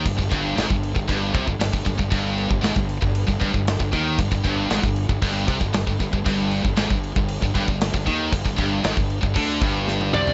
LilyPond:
<<
  \new Staff \with { instrumentName = "Lead electric guitar" } { \time 4/4 \tempo 4 = 116 r1 | r1 | r1 | r1 |
r2. r8 d''8 | }
  \new Staff \with { instrumentName = "Distorted electric guitar" } { \clef bass \time 4/4 g,16 g,16 g,8 gis,16 g,8 g,16 g,8 c16 g,16 g,16 g,16 g,16 g,16 | g,8. g,16 gis,16 g,8 g,8 g,16 g,16 g,8 g,16 ees8 | g,16 g,16 g,8 gis,16 g,8 g,16 g,8 c16 g,16 g,16 g,16 g,16 g,16 | g,8. g,16 gis,16 g,8 g,8 g,16 g,16 g,8 g,16 ees8 |
g,16 g,16 g,8 gis,16 g,8 g,16 d8 g,4 c8 | }
  \new Staff \with { instrumentName = "Distorted electric guitar" } { \clef bass \time 4/4 g,16 g,16 g,8 gis,16 g,8 g,16 g,8 c16 g,16 g,16 g,16 g,16 g,16 | g,8. g,16 gis,16 g,8 g,8 g,16 g,16 g,8 g,16 ees8 | g,16 g,16 g,8 gis,16 g,8 g,16 g,8 c16 g,16 g,16 g,16 g,16 g,16 | g,8. g,16 gis,16 g,8 g,8 g,16 g,16 g,8 g,16 ees8 |
g,16 g,16 g,8 gis,16 g,8 g,16 d8 g,4 c8 | }
  \new Staff \with { instrumentName = "Overdriven electric guitar" } { \clef bass \time 4/4 g,16 g,16 g,8 gis,16 g,8 g,16 g,8 c16 g,16 g,16 g,16 g,16 g,16 | g,8. g,16 gis,16 g,8 g,8 g,16 g,16 g,8 g,16 ees8 | g,16 g,16 g,8 gis,16 g,8 g,16 g,8 c16 g,16 g,16 g,16 g,16 g,16 | g,8. g,16 gis,16 g,8 g,8 g,16 g,16 g,8 g,16 ees8 |
g,16 g,16 g,8 gis,16 g,8 g,16 d8 g,4 c8 | }
  \new Staff \with { instrumentName = "Fingered electric bass" } { \clef bass \time 4/4 g,,16 g,,16 g,,8 gis,,16 g,,8 g,,16 g,,8 c,16 g,,16 g,,16 g,,16 g,,16 g,,16 | g,,8. g,,16 gis,,16 g,,8 g,,8 g,,16 g,,16 g,,8 g,,16 ees,8 | g,,16 g,,16 g,,8 gis,,16 g,,8 g,,16 g,,8 c,16 g,,16 g,,16 g,,16 g,,16 g,,16 | g,,8. g,,16 gis,,16 g,,8 g,,8 g,,16 g,,16 g,,8 g,,16 ees,8 |
g,,16 g,,16 g,,8 gis,,16 g,,8 g,,16 d,8 g,,4 c,8 | }
  \new DrumStaff \with { instrumentName = "Drums" } \drummode { \time 4/4 <cymc bd>16 bd16 <cymc bd>8 <cymc sn>16 bd16 cymc16 bd16 <cymc bd>8 <cymc bd>16 bd16 <cymc sn>16 bd16 <cymc bd>16 bd16 | <cymc bd>8 cymc16 bd16 <cymc sn>16 bd16 cymc16 bd16 cymc16 bd16 <cymc bd>16 bd16 <cymc sn>16 bd16 <cymc bd>8 | <cymc bd>16 bd16 <cymc bd>8 <cymc sn>16 bd16 cymc16 bd16 <cymc bd>8 <cymc bd>16 bd16 <cymc sn>16 bd16 <cymc bd>16 bd16 | <cymc bd>8 cymc16 bd16 <cymc sn>16 bd16 cymc16 bd16 cymc16 bd16 <cymc bd>16 bd16 <cymc sn>16 bd16 <cymc bd>8 |
<cymc bd>16 bd16 <cymc bd>8 <cymc sn>16 bd16 cymc16 bd16 <cymc bd>8 <cymc bd>8 sn16 tommh16 toml16 tomfh16 | }
>>